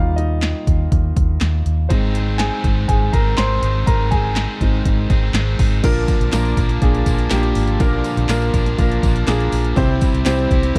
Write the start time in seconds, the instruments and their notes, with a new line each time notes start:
Already playing: fingered electric bass D#2, grand piano G3 A#3 D#4 F4 G4 F5 G5
0.16 grand piano D#4 D#5, closed hi-hat
0.42 snare, clap, closed hi-hat
0.67 fingered electric bass D#2, kick, closed hi-hat
0.92 fingered electric bass D#2, kick, closed hi-hat
1.16 fingered electric bass D#2, kick, closed hi-hat
1.41 fingered electric bass D#2, snare, clap, closed hi-hat
1.66 fingered electric bass D#2, closed hi-hat
1.89 fingered electric bass G#1, overdriven electric guitar G#2 D#3 G#3 C4 D#4 G#4, grand piano G#3 C4 D#4 C5, kick, closed hi-hat
2.14 overdriven electric guitar G#3 C4 D#4 G#4, closed hi-hat
2.38 overdriven electric guitar G#3 C4 D#4 G#4, grand piano G#4 G#5, snare, clap, closed hi-hat
2.64 fingered electric bass G#1, kick, closed hi-hat
2.88 fingered electric bass G#1, grand piano G#4 G#5, kick, closed hi-hat
3.13 fingered electric bass G#1, overdriven electric guitar G#3 C4 D#4 G#4, grand piano A#4 A#5, kick, closed hi-hat
3.37 fingered electric bass G#1, overdriven electric guitar G#3 C4 D#4 G#4, grand piano C5 C6, snare, clap, closed hi-hat
3.62 fingered electric bass G#1, overdriven electric guitar G#3 C4 D#4 G#4, closed hi-hat
3.86 fingered electric bass G#1, overdriven electric guitar G#2 D#3 G#3 C4 D#4 G#4, grand piano A#4 A#5, kick, closed hi-hat
4.11 overdriven electric guitar G#3 C4 D#4 G#4, grand piano G#4 G#5, kick, closed hi-hat
4.36 overdriven electric guitar G#3 C4 D#4 G#4, snare, clap, closed hi-hat
4.61 fingered electric bass G#1, grand piano G#3 C4 D#4, kick, closed hi-hat
4.85 fingered electric bass G#1, kick, closed hi-hat
5.10 fingered electric bass G#1, overdriven electric guitar G#3 C4 D#4 G#4, kick, closed hi-hat
5.33 fingered electric bass G#1, overdriven electric guitar G#3 C4 D#4 G#4, snare, clap, closed hi-hat
5.59 fingered electric bass G#1, overdriven electric guitar G#3 C4 D#4 G#4, kick, open hi-hat
5.83 fingered electric bass A#1, overdriven electric guitar A#2 D3 F3 A#3 D4 A#4, grand piano A#2 F3 A#3 D4 F4 A#4, kick, closed hi-hat, crash, tambourine
6.08 kick, closed hi-hat, tambourine
6.20 fingered electric bass A#1, closed hi-hat
6.32 fingered electric bass A#1, overdriven electric guitar F3 A#3 D4 A#4, grand piano A#3 D4 F4 A#4, snare, clap, closed hi-hat, tambourine
6.45 closed hi-hat
6.57 fingered electric bass A#1, overdriven electric guitar F3 A#3 D4 A#4, kick, closed hi-hat, tambourine
6.69 snare, closed hi-hat
6.82 fingered electric bass A#1, grand piano A#3 D4 F4 G#4, kick, closed hi-hat
6.95 closed hi-hat
7.06 fingered electric bass A#1, overdriven electric guitar F3 A#3 D4 A#4, kick, closed hi-hat, tambourine
7.19 closed hi-hat
7.30 fingered electric bass A#1, overdriven electric guitar F3 A#3 D4 A#4, grand piano A#3 D4 F4 G4, snare, clap, closed hi-hat, tambourine
7.43 closed hi-hat
7.55 fingered electric bass G#1, open hi-hat, tambourine
7.67 closed hi-hat
7.80 fingered electric bass A#1, overdriven electric guitar A#2 D3 F3 A#3 D4 A#4, grand piano A#2 F3 A#3 D4 F4 A#4, kick, closed hi-hat, tambourine
8.04 closed hi-hat, tambourine
8.17 fingered electric bass A#1, closed hi-hat
8.29 fingered electric bass A#1, overdriven electric guitar F3 A#3 D4 A#4, grand piano A#3 D4 F4 A#4, snare, clap, closed hi-hat, tambourine
8.42 closed hi-hat
8.54 fingered electric bass A#1, overdriven electric guitar F3 A#3 D4 A#4, kick, closed hi-hat, tambourine
8.66 snare, closed hi-hat
8.78 fingered electric bass A#1, grand piano A#3 D4 F4 A#4, kick, closed hi-hat, tambourine
8.92 closed hi-hat
9.02 fingered electric bass A#1, overdriven electric guitar F3 A#3 D4 A#4, kick, closed hi-hat, tambourine
9.16 closed hi-hat
9.27 fingered electric bass A#1, overdriven electric guitar F3 A#3 D4 A#4, grand piano A#3 D4 F4 G#4, snare, clap, closed hi-hat, tambourine
9.40 closed hi-hat
9.52 fingered electric bass A#1, open hi-hat, tambourine
9.65 closed hi-hat
9.76 fingered electric bass C2, overdriven electric guitar C3 G3 C4 E4 G4, grand piano C3 G3 C4 E4 G4 C5, kick, closed hi-hat, tambourine
10.01 kick, closed hi-hat, tambourine
10.14 fingered electric bass C2, closed hi-hat
10.25 fingered electric bass C2, overdriven electric guitar G3 C4 E4 G4, grand piano C4 E4 G4 C5, snare, clap, closed hi-hat, tambourine
10.39 closed hi-hat
10.51 fingered electric bass C2, overdriven electric guitar C4 E4 G4, kick, closed hi-hat
10.63 snare, closed hi-hat
10.75 fingered electric bass C2, grand piano C4 E4 G4 A#4, kick, tambourine